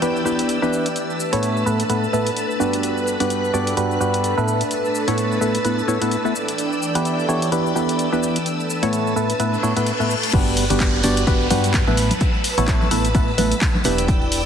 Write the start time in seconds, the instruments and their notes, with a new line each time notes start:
Already playing: analog synth pad E3 D4 G4 B4, string machine D5 G5 E6
0.02 synth stab E3 B3 D4 E4 G4 B4, closed hi-hat, cabasa
0.16 cabasa
0.25 synth stab E3 B3 D4 E4 G4 B4, cabasa
0.39 closed hi-hat, cabasa
0.49 closed hi-hat, cabasa
0.62 synth stab E3 B3 D4 E4 G4 B4, cabasa
0.73 cabasa
0.86 closed hi-hat, cabasa
0.96 analog synth pad A3, string machine B4 A5, closed hi-hat, cabasa
1.08 analog synth pad D4, cabasa
1.17 analog synth pad A4, cabasa
1.33 synth stab A2 A3 B3 E4 A4 C#5, closed hi-hat, cabasa
1.43 closed hi-hat, cabasa
1.57 cabasa
1.65 synth stab A2 A3 B3 E4 A4 B4, analog synth pad B4, cabasa
1.80 closed hi-hat, cabasa
1.89 synth stab A2 A3 B3 E4 A4 B4, closed hi-hat, cabasa
2.04 cabasa
2.13 synth stab A2 A3 B3 E4 A4 B4, cabasa
2.27 closed hi-hat, cabasa
2.37 closed hi-hat, cabasa
2.51 cabasa
2.60 synth stab G2 B3 D4 F#4 G4 B4, cabasa
2.73 closed hi-hat, cabasa
2.83 string machine F#6, closed hi-hat, cabasa
2.98 cabasa
3.08 cabasa
3.20 synth stab G2 B3 D4 F#4 G4 B4, closed hi-hat, cabasa
3.30 closed hi-hat, cabasa
3.45 cabasa
3.54 synth stab G2 B3 D4 F#4 G4 D5, cabasa
3.67 closed hi-hat, cabasa
3.77 synth stab G2 B3 D4 F#4 G4 B4, closed hi-hat, cabasa
3.91 cabasa
4.00 synth stab G2 B3 D4 F#4 G4 B4, cabasa
4.14 closed hi-hat, cabasa
4.24 closed hi-hat, cabasa
4.37 synth stab A2 A3 B3 E4 A4 B4, cabasa
4.47 analog synth pad A3, string machine B4 A5 E6, cabasa
4.61 closed hi-hat, cabasa
4.71 closed hi-hat, cabasa
4.85 cabasa
4.95 cabasa
5.08 synth stab A2 A3 B3 E4 A4 C#5, closed hi-hat, cabasa
5.18 closed hi-hat, cabasa
5.32 cabasa
5.41 synth stab A2 A3 B3 E4 A4 B4, cabasa
5.55 closed hi-hat, cabasa
5.65 synth stab A2 A3 B3 E4 A4 B4, closed hi-hat, cabasa
5.79 cabasa
5.88 synth stab A2 A3 B3 E4 A4 C#5, cabasa
6.02 synth stab A2 A3 B3 E4 A4 B4, closed hi-hat, cabasa
6.11 closed hi-hat, cabasa
6.25 synth stab A3 B3 E4 A4 B4, cabasa
6.35 analog synth pad E3, string machine D5 G5, cabasa
6.48 closed hi-hat, cabasa
6.58 closed hi-hat, cabasa
6.73 cabasa
6.83 cabasa
6.95 synth stab E3 B3 D4 E4 G4 B4, closed hi-hat, cabasa
7.05 closed hi-hat, cabasa
7.20 cabasa
7.29 synth stab E3 B3 D4 E4 G4 C#5, cabasa
7.42 closed hi-hat, cabasa
7.52 synth stab E3 B3 D4 E4 G4 B4, closed hi-hat, cabasa
7.66 cabasa
7.76 synth stab E3 B3 D4 E4 G4 B4, cabasa
7.89 closed hi-hat, cabasa
7.99 closed hi-hat, cabasa
8.12 synth stab E3 B3 D4 E4 G4 B4, cabasa
8.23 cabasa
8.36 closed hi-hat, cabasa
8.46 analog synth pad A3, string machine B4 A5, closed hi-hat, cabasa
8.60 cabasa
8.70 cabasa
8.83 synth stab A2 A3 B3 E4 A4 C#5, closed hi-hat, cabasa
8.93 closed hi-hat, cabasa
9.07 cabasa
9.16 synth stab A2 A3 B3 E4 A4 B4, cabasa
9.30 closed hi-hat, cabasa
9.40 synth stab A2 A3 B3 E4 A4 B4, closed hi-hat, reverse cymbal, cabasa
9.54 cabasa
9.63 synth stab A2 A3 B3 E4 A4 C#5, cabasa
9.77 synth stab A2 A3 B3 E4 A4 B4, closed hi-hat, cabasa
9.86 closed hi-hat, cabasa
10.00 synth stab A2 A3 B3 E4 A4 B4, cabasa
10.11 cabasa
10.23 closed hi-hat, cabasa
10.33 fm bass G1, synth stab G2 B3 D4 F#4 G4 B4, string machine B4 F#6, kick, closed hi-hat, crash, tambourine, downlifter, cabasa
10.47 tambourine
10.57 open hi-hat, tambourine, cabasa
10.70 fm bass G1, synth stab G2 B3 D4 F#4 G4 B4, closed hi-hat, tambourine, cabasa
10.80 kick, clap, closed hi-hat, tambourine, cabasa
10.94 tambourine
11.03 fm bass G1, synth stab G2 B3 D4 F#4 G4 D5, open hi-hat, tambourine, cabasa
11.17 closed hi-hat, tambourine, cabasa
11.27 fm bass G1, synth stab G2 B3 D4 F#4 G4 B4, kick, closed hi-hat, tambourine, cabasa
11.41 tambourine
11.50 fm bass G2, synth stab G2 B3 D4 F#4 G4 B4, open hi-hat, tambourine, high conga, cabasa
11.63 closed hi-hat, tambourine, cabasa
11.74 kick, clap, closed hi-hat, tambourine, cabasa
11.87 fm bass A1, synth stab A2 A3 B3 E4 A4 B4, tambourine, high conga
11.97 string machine A5 E6, open hi-hat, tambourine, cabasa
12.11 closed hi-hat, tambourine, high conga, cabasa
12.20 kick, closed hi-hat, tambourine, cabasa
12.34 tambourine
12.44 open hi-hat, tambourine, cabasa
12.58 fm bass A1, synth stab A2 A3 B3 E4 A4 C#5, closed hi-hat, cabasa
12.68 kick, clap, closed hi-hat, tambourine, cabasa
12.81 tambourine, high conga
12.91 fm bass A1, synth stab A2 A3 B3 E4 A4 B4, open hi-hat, tambourine, cabasa
13.04 closed hi-hat, tambourine, cabasa
13.14 fm bass A1, synth stab A2 A3 B3 E4 A4 B4, kick, closed hi-hat, tambourine, cabasa
13.28 tambourine
13.38 fm bass A1, synth stab A2 A3 B3 E4 A4 B4, open hi-hat, tambourine, high conga, cabasa
13.51 closed hi-hat, tambourine, cabasa
13.61 kick, clap, closed hi-hat, tambourine, cabasa
13.75 tambourine, high conga
13.84 fm bass E1, synth stab E3 B3 D4 E4 G4 B4, string machine D5 G5, open hi-hat, tambourine, cabasa
13.98 closed hi-hat, tambourine, cabasa
14.08 kick, closed hi-hat, tambourine, cabasa
14.21 tambourine
14.32 open hi-hat, tambourine, cabasa